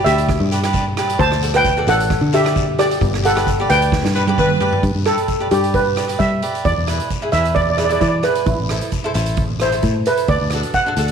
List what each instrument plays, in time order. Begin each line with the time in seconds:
Already playing: cavaquinho G4 B4 D5
0.05 fingered electric bass D2, steel pan G4 E5, closed hi-hat, short guiro
0.18 closed hi-hat
0.29 kick, cross-stick, closed hi-hat, long guiro
0.40 fingered electric bass G2
0.52 cavaquinho G4 B4 D5, closed hi-hat, short guiro
0.64 cavaquinho G4 B4 D5, cross-stick, closed hi-hat
0.73 kick, closed hi-hat, short guiro
0.97 cavaquinho G4 B4 D5, cross-stick, closed hi-hat
1.10 closed hi-hat
1.19 fingered electric bass D2, steel pan C5 A5, kick, closed hi-hat, long guiro
1.32 cross-stick
1.42 cavaquinho F#4 A4 D5, closed hi-hat
1.54 cavaquinho F#4 A4 D5, steel pan B4 G5, cross-stick, closed hi-hat
1.65 kick, closed hi-hat, short guiro
1.77 cavaquinho F#4 A4 D5
1.87 fingered electric bass A1, steel pan A4 F#5, closed hi-hat, short guiro
2.00 closed hi-hat
2.09 kick, cross-stick, closed hi-hat, long guiro
2.21 fingered electric bass D3
2.33 cavaquinho F#4 A4 D5, steel pan G4 E5, closed hi-hat, short guiro
2.44 cavaquinho F#4 A4 D5, cross-stick, closed hi-hat
2.56 kick, closed hi-hat, short guiro
2.78 cavaquinho F#4 A4 D5, steel pan G4 D5, cross-stick, closed hi-hat
2.91 closed hi-hat
3.01 fingered electric bass G1, kick, closed hi-hat, long guiro
3.14 cross-stick
3.23 cavaquinho G4 B4 D5, steel pan A4 F#5, closed hi-hat
3.35 cavaquinho G4 B4 D5, cross-stick, closed hi-hat
3.47 kick, closed hi-hat, short guiro
3.60 cavaquinho G4 B4 D5
3.70 fingered electric bass D2, steel pan B4 G5, closed hi-hat, short guiro
3.82 closed hi-hat
3.92 kick, snare, long guiro
4.04 fingered electric bass G2, snare
4.15 cavaquinho G4 B4 D5, horn section B4, short guiro
4.27 cavaquinho G4 B4 D5, high tom
4.38 horn section B4, kick, mid tom, short guiro
4.60 cavaquinho G4 B4 D5, floor tom
4.73 floor tom
4.83 fingered electric bass G2, kick, closed hi-hat, long guiro
4.95 fingered electric bass G2
5.06 cavaquinho G4 B4 D5, steel pan A4, cross-stick, closed hi-hat
5.18 closed hi-hat
5.28 kick, closed hi-hat, short guiro
5.40 cavaquinho G4 B4 D5
5.51 fingered electric bass G2, steel pan G4, cavaquinho G4 B4 D5, closed hi-hat
5.64 closed hi-hat
5.74 steel pan B4, kick, closed hi-hat, long guiro
5.96 cavaquinho G4 B4 D5, cross-stick, closed hi-hat, short guiro
6.08 cavaquinho G4 B4 D5, closed hi-hat
6.19 fingered electric bass G3, steel pan E5, kick, closed hi-hat, short guiro
6.42 cavaquinho G4 B4 D5, closed hi-hat
6.55 closed hi-hat
6.65 fingered electric bass E2, steel pan D5, kick, closed hi-hat, long guiro
6.77 fingered electric bass E2
6.87 cavaquinho E4 G#4 B4, cross-stick, closed hi-hat
7.00 closed hi-hat
7.10 kick, closed hi-hat, short guiro
7.22 cavaquinho E4 G#4 B4
7.32 fingered electric bass E2, cavaquinho E4 G#4 B4, steel pan E5, closed hi-hat, short guiro
7.45 closed hi-hat
7.55 steel pan D5, kick, closed hi-hat, long guiro
7.61 steel pan D5
7.70 steel pan D5
7.78 cavaquinho E4 G#4 B4, steel pan D5, cross-stick, closed hi-hat, short guiro
7.85 steel pan D5
7.89 cavaquinho E4 G#4 B4, steel pan D5, closed hi-hat
8.01 fingered electric bass E3, steel pan D5, kick, closed hi-hat, short guiro
8.08 steel pan D5
8.23 cavaquinho E4 G#4 B4, steel pan B4, cross-stick, closed hi-hat
8.35 closed hi-hat
8.46 fingered electric bass A1, steel pan E4, kick, closed hi-hat, long guiro
8.59 fingered electric bass A1
8.69 cavaquinho E4 A4 C5, cross-stick, closed hi-hat
8.81 closed hi-hat
8.92 kick, closed hi-hat, short guiro
9.04 cavaquinho E4 A4 C5
9.14 fingered electric bass A1, cavaquinho E4 A4 C5, closed hi-hat, short guiro
9.26 closed hi-hat
9.37 kick, closed hi-hat, long guiro
9.60 cavaquinho E4 A4 C5, steel pan C5, cross-stick, closed hi-hat, short guiro
9.72 cavaquinho E4 A4 C5, closed hi-hat
9.83 fingered electric bass A2, kick, closed hi-hat, short guiro
10.06 cavaquinho E4 A4 C5, steel pan B4, closed hi-hat
10.17 closed hi-hat
10.28 fingered electric bass D2, steel pan D5, kick, closed hi-hat, long guiro
10.41 fingered electric bass D2
10.50 cavaquinho D4 F#4, cross-stick, closed hi-hat
10.55 cavaquinho A4
10.63 closed hi-hat
10.74 steel pan F#5, kick, closed hi-hat, short guiro
10.86 cavaquinho D4 F#4 A4
10.96 fingered electric bass D2, cavaquinho D4 F#4 A4, closed hi-hat, short guiro
11.08 closed hi-hat